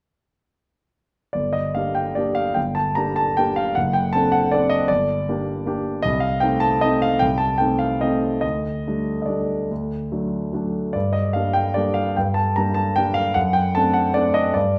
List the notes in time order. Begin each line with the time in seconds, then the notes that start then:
1.33 G1 D5
1.53 D#5
1.75 A#3 D4 G4 F5
1.95 G5
2.15 A#3 D4 G4 D5
2.35 F5
2.54 G1 G5
2.75 A5
2.95 A#3 D4 G4 A#5
3.16 A5
3.37 A#3 D4 G4 G5
3.56 F5
3.75 F#1 F#5
3.93 G5
4.13 C4 D4 A4 A5
4.32 F#5
4.52 C4 D4 A4 D5
4.70 D#5
4.88 G1 D5
5.29 A#3 D4 G4
5.66 A#3 D4 G4
6.02 C2 D#5
6.20 F5
6.40 A3 C4 D#4 G5
6.60 A5
6.81 A3 C4 D#4 D#5
7.02 F5
7.19 C2 G5
7.38 A5
7.58 A3 C4 D#4 G5
7.79 F5
8.01 A3 C4 D#4 D#5
8.41 D2 D#5
8.87 G3 A3 D4
9.22 D5 D#5
9.28 G3 A3 D4
9.71 D2
10.12 F#3 A3 D4
10.53 F#3 A3 D4
10.93 G2 D5
11.13 D#5
11.33 G3 A#3 D4 F5
11.53 G5
11.74 G3 A#3 D4 D5
11.94 F5
12.16 G2 G5
12.34 A5
12.56 G3 A#3 D4 A#5
12.74 A5
12.96 G3 A#3 D4 G5
13.14 F5
13.34 F#2 F#5
13.53 G5
13.75 A3 C4 D4 A5
13.94 F#5
14.14 A3 C4 D4 D5
14.34 D#5
14.54 G2 D5